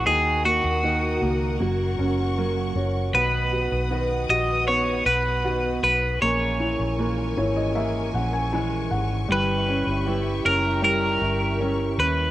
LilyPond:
<<
  \new Staff \with { instrumentName = "String section" } { \time 4/4 \key b \major \tempo 4 = 78 << { dis'''2 cis'''2 | dis'''1 | cis'''1~ | cis'''1 | } \\ { <ais' fis''>1 | <b' fis''>1 | <ais' gis''>1 | <g' e''>1 | } >> }
  \new Staff \with { instrumentName = "Clean electric guitar" } { \time 4/4 \key b \major gis'8 fis'4. r2 | b'4. dis''8 cis''8 b'4 b'8 | cis''2 r2 | b'4. ais'8 ais'4. b'8 | }
  \new Staff \with { instrumentName = "Felt piano" } { \time 4/4 \key b \major << { r1 | r1 | r4. cis''16 dis''16 e''8 fis''16 gis''16 gis''8 fis''8 | r1 | } \\ { dis8 ais8 dis8 ais8 fis8 cis'8 ais'8 cis''8 | b8 fis'8 b8 fis'8 b4 fis'4 | ais8 e'8 ais8 e'8 ais4 e'4 | g8 cis'8 g'8 cis'8 g4 cis'4 | } >> }
  \new Staff \with { instrumentName = "Steel-string acoustic guitar" } { \time 4/4 \key b \major <dis ais dis' fis'>4 <dis ais dis' fis'>4 <fis ais cis' fis'>8 <fis ais cis' fis'>8 <fis, cis fis ais cis' fis'>8 <fis ais cis' fis'>8 | <b, dis b dis' fis'>4 <dis b dis' fis'>4 <dis b dis' fis'>8 <b dis' fis'>8 <b, dis b dis' fis'>8 <b fis'>8 | <ais, e gis cis' gis'>4 <ais, e gis cis' gis'>4 <e gis cis' gis'>8 <gis cis' gis'>8 <ais, e gis cis' gis'>8 <gis cis' gis'>8 | <g cis' e' b'>4 <g cis' e'>4 <g cis' e'>8 <cis' e'>8 <g cis' e'>8 <cis' e' b'>8 | }
  \new Staff \with { instrumentName = "Fingered electric bass" } { \clef bass \time 4/4 \key b \major dis,8. dis,8. cis,8 fis,,8 fis,,4 fis,,8 | b,,8. b,,8. ais,,4 b,,4 b,,8 | ais,,8. ais,,8. gis,,4 ais,,4 gis,,8 | g,,8. g,,8. fis,,4 g,,4 dis,8 | }
>>